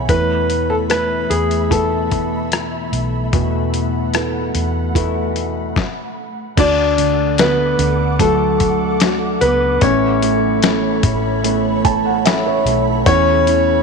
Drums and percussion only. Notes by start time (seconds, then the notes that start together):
0.09 kick, closed hi-hat
0.50 closed hi-hat
0.90 cross-stick, closed hi-hat
1.31 closed hi-hat
1.51 closed hi-hat
1.71 kick, closed hi-hat
2.11 kick, closed hi-hat
2.52 cross-stick, closed hi-hat
2.93 closed hi-hat
3.33 kick, closed hi-hat
3.74 closed hi-hat
4.14 cross-stick, closed hi-hat
4.55 closed hi-hat
4.95 kick, closed hi-hat
5.36 closed hi-hat
5.76 kick, snare
6.57 kick, closed hi-hat, crash
6.98 closed hi-hat
7.38 snare, closed hi-hat
7.79 closed hi-hat
8.19 kick, closed hi-hat
8.60 kick, closed hi-hat
9.00 snare, closed hi-hat
9.41 closed hi-hat
9.81 kick, closed hi-hat
10.22 closed hi-hat
10.62 snare, closed hi-hat
11.03 kick, closed hi-hat
11.44 closed hi-hat
11.85 kick, closed hi-hat
12.26 snare, closed hi-hat
12.67 closed hi-hat
13.06 kick, closed hi-hat
13.47 closed hi-hat